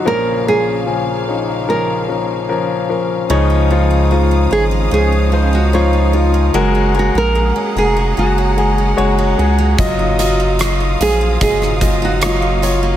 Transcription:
<<
  \new Staff \with { instrumentName = "String section" } { \time 4/4 \key des \major \tempo 4 = 74 <des bes f''>1 | <des' f'' ees'''>1 | <aes' ges'' bes''>1 | <f' f'' ees'''>1 | }
  \new Staff \with { instrumentName = "Nylon-string guitar" } { \time 4/4 \key des \major bes'8 aes'4. bes'4 r4 | r4. aes'8 aes'8. ges'16 f'8. r16 | r8 ges'16 bes'8. aes'8 ges'4. r8 | r4. aes'8 aes'8. ges'16 f'8. r16 | }
  \new Staff \with { instrumentName = "Grand piano" } { \time 4/4 \key des \major <f des' bes'>8 <f des' bes'>8 <f des' aes'>8 <f des' ees'>8 <f des' bes'>8 <f des' bes'>8 <f des' bes'>8 <f des' bes'>8 | <f ees' des''>8 <f ees' f'>8 <f ees' f'>8 <f ees' des''>8 <f ees' des''>8 <f ees' c''>8 <f ees' des''>8 <f ees' f'>8 | <aes ges' bes'>8 <aes ges' bes'>8 <aes ges' bes'>8 <aes ges' bes'>8 <aes ges' aes'>8 <aes ges' aes'>8 <aes ges' des''>8 <aes ges' aes'>8 | <ges f' ees''>8 <ges f' ees''>8 <ges f' ees''>8 <f ges f''>8 <ges f' ees''>8 <ges f' ees''>8 <ges f' ees''>8 <ges f' des''>8 | }
  \new Staff \with { instrumentName = "Grand piano" } { \clef bass \time 4/4 \key des \major <bes,, bes,>1 | des4. r2 r8 | r1 | r1 | }
  \new Staff \with { instrumentName = "Steel-string acoustic guitar" } { \time 4/4 \key des \major r1 | des16 ees'16 aes16 ees'16 aes16 ees'16 f'16 aes16 des16 ees'16 aes16 ees'16 aes16 ees'16 f'16 aes16 | ges16 des'16 bes16 des'16 bes16 des'16 aes'16 bes16 ges16 des'16 bes16 des'16 bes16 des'16 aes'16 bes16 | ges16 ees'16 bes16 ees'16 bes16 ees'16 f'16 bes16 ges16 ees'16 bes16 ees'16 bes16 ees'16 f'16 bes16 | }
  \new Staff \with { instrumentName = "Sub bass" } { \clef bass \time 4/4 \key des \major r1 | des,4. aes,,8 des,2 | ges,,8. bes,,8 r16 f,,8 ges,,4 ges,,8 des,8 | ges,,4. bes,,8 ges,,2 | }
  \new DrumStaff \with { instrumentName = "Drums" } \drummode { \time 4/4 r4 r4 r4 r4 | r4 r4 r4 r4 | r4 r4 r4 r4 | <hh bd>8 hh8 <hh ss>8 hh8 <hh bd>16 ss16 <hh bd>8 <hh ss>8 hh8 | }
>>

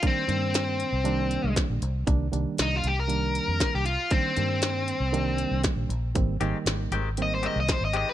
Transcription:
<<
  \new Staff \with { instrumentName = "Overdriven electric guitar" } { \time 4/4 \key c \minor \tempo 4 = 118 c'2. r4 | r4 ees'16 f'16 g'16 bes'4. g'16 f'8 | c'2. r4 | r2 ees''16 c''16 ees''16 ees''16 c''16 ees''16 ees''16 b'16 | }
  \new Staff \with { instrumentName = "Clean electric guitar" } { \time 4/4 \key c \minor r1 | r1 | r1 | r8 <ees aes c' g'>8 r8 <ees aes c' g'>8 r8 <ees aes c' g'>8 r8 <ees aes c' g'>8 | }
  \new Staff \with { instrumentName = "Reed electric piano" } { \clef bass \time 4/4 \key c \minor <ees g bes d'>8 <ees g bes d'>4 r8 <ees g bes d'>4. r8 | <ees g bes d'>8 <ees g bes d'>4 r8 <ees g bes d'>4. r8 | <ees g bes d'>8 <ees g bes d'>4 r8 <ees g bes d'>4. r8 | <ees g bes c'>8 <ees g bes ees'>4 r8 <ees g bes c'>4. r8 | }
  \new Staff \with { instrumentName = "Fingered electric bass" } { \clef bass \time 4/4 \key c \minor r8 g,4~ g,16 c,4 c,16 r16 bes,,16 c,8 | c,8 c,16 r16 c,8 c,4~ c,16 f,16 r16 c,8 r16 | r8 g,4~ g,16 c,4 c,16 r16 bes,,16 bes,,8 | aes,,8 aes,,16 r16 aes,,8 aes,,4~ aes,,16 c,16 r16 aes,,8 r16 | }
  \new DrumStaff \with { instrumentName = "Drums" } \drummode { \time 4/4 <hh bd>8 hh8 <hh sn>8 hh8 hh8 hh8 <hh bd sn>8 hh8 | <hh bd>8 hh8 <hh sn>8 hh8 hh8 hh8 <hh bd sn>8 hh8 | <hh bd>8 hh8 <hh sn>8 hh8 hh8 hh8 <hh bd sn>8 hh8 | <hh bd>8 hh8 <hh sn>8 hh8 hh8 hh8 <hh bd sn>8 hh8 | }
>>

